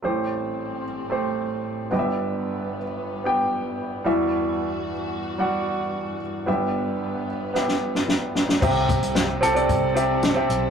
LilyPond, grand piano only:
<<
  \new Staff \with { instrumentName = "Grand piano" } { \time 4/4 \key g \major \tempo 4 = 112 <a g' c''>4. r8 <a g' c''>4. <b g' ees'' e''>8~ | <b g' ees'' e''>4 r4 <b g' g''>4. <g fis' e''>8~ | <g fis' e''>4 r4 <g fis' fis''>4. r8 | <b g' e''>4. r8 <b g' e''>4. r8 |
<c' g' e''>4 r8 <c' g' a'>16 <c' g' d''>8 r16 <c' g' e''>8 r16 <c' g' e''>8 r16 | }
  \new Staff \with { instrumentName = "Grand piano" } { \clef bass \time 4/4 \key g \major <a,, a,>2.~ <a,, a,>8 <g,, g,>8~ | <g,, g,>2.~ <g,, g,>8 <e, e>8~ | <e, e>2.~ <e, e>8 r8 | <g,, g,>1 |
c4. r2 r8 | }
>>